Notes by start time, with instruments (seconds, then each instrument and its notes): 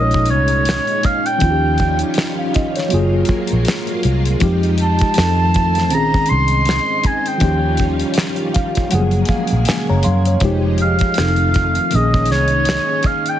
Already playing: fingered electric bass A#1, string machine A#2 G#3 C#4 D#4, tine electric piano G#3 C#4 D#4, oboe D#5
0.02 tine electric piano C#5
0.11 kick, closed hi-hat
0.26 closed hi-hat
0.30 fingered electric bass C2, oboe C#5
0.48 closed hi-hat
0.65 snare, closed hi-hat
0.70 finger snap
0.87 closed hi-hat
1.03 oboe F5, kick, closed hi-hat
1.26 oboe G5, closed hi-hat
1.38 string machine D#3 G3 F4, tine electric piano F3 C#4, kick, closed hi-hat
1.42 fingered electric bass D#2, tine electric piano D#4 F4
1.51 tine electric piano G4
1.78 kick, closed hi-hat
1.99 closed hi-hat
2.14 snare, closed hi-hat
2.19 finger snap
2.39 tine electric piano F5
2.54 tine electric piano D#5, kick, closed hi-hat
2.76 tine electric piano C#5, snare, closed hi-hat
2.88 tine electric piano F#3 A#3 F4, string machine F#3 G#3 A#3 F4, closed hi-hat
2.93 fingered electric bass F#1, tine electric piano G#4
3.25 kick, closed hi-hat
3.30 muted fingered electric bass stroke
3.47 closed hi-hat
3.52 fingered electric bass A#1
3.65 snare, closed hi-hat
3.69 finger snap
3.87 closed hi-hat
4.03 fingered electric bass C2, closed hi-hat
4.25 closed hi-hat
4.40 fingered electric bass F2, tine electric piano F3 G#3 D#4 G4, string machine D#4 G4, kick, closed hi-hat
4.63 closed hi-hat
4.78 closed hi-hat
4.83 oboe A5
4.99 kick, closed hi-hat
5.14 fingered electric bass F2, string machine D#3 A3 F4 C5, tine electric piano F3 C4 D#4, snare, closed hi-hat
5.19 tine electric piano A4, finger snap
5.54 kick, closed hi-hat
5.75 snare, closed hi-hat
5.88 tine electric piano D#3 C4 C#4, string machine D#3 G#3, closed hi-hat
5.92 fingered electric bass A#1, string machine D#4, tine electric piano G#4, oboe A#5
6.14 kick
6.26 oboe C6, closed hi-hat
6.31 fingered electric bass C2
6.48 closed hi-hat
6.65 snare, closed hi-hat
6.70 finger snap
7.04 oboe G#5, kick, closed hi-hat
7.26 oboe G5, closed hi-hat
7.38 string machine D#3 G3 C#4 F4, tine electric piano F3 C#4, kick, closed hi-hat
7.42 fingered electric bass D#2, tine electric piano D#4 G4
7.77 kick, closed hi-hat
8.00 closed hi-hat
8.14 snare, closed hi-hat
8.19 finger snap
8.36 closed hi-hat
8.54 tine electric piano F5, kick, closed hi-hat
8.75 kick, closed hi-hat
8.89 fingered electric bass F#1, string machine C#3 G#3 A#3 G#4, tine electric piano F#3 G#3 F#5, closed hi-hat
8.93 tine electric piano F3 G#4
8.98 tine electric piano A#3
9.11 closed hi-hat
9.25 tine electric piano F5, kick, closed hi-hat
9.30 muted fingered electric bass stroke
9.47 closed hi-hat
9.52 fingered electric bass A#1
9.65 tine electric piano G#5, snare, closed hi-hat
9.70 finger snap
9.89 fingered electric bass F#1, tine electric piano C#5 A#5
10.03 fingered electric bass F#2, tine electric piano F5 C6, closed hi-hat
10.25 tine electric piano C#5, closed hi-hat
10.40 fingered electric bass F1, tine electric piano F3 G#3 D#4, string machine F3 G#3 D#4 G4, kick, closed hi-hat
10.45 tine electric piano G4
10.78 oboe F5, closed hi-hat
10.99 kick, closed hi-hat
11.14 string machine D#3 A3 F4, tine electric piano F3 C4, snare, closed hi-hat
11.18 fingered electric bass F1, tine electric piano D#4 A4, finger snap
11.36 closed hi-hat
11.54 kick, closed hi-hat
11.75 closed hi-hat
11.90 fingered electric bass A#1, tine electric piano D#3 A#3, string machine G#3 C#4 D#4, closed hi-hat
11.94 tine electric piano C#4 G#4, oboe D#5
12.14 kick
12.26 closed hi-hat
12.30 fingered electric bass C2, oboe C#5, snare
12.48 closed hi-hat
12.65 snare, closed hi-hat
12.70 finger snap
13.03 oboe F5, kick, closed hi-hat
13.26 oboe G5, closed hi-hat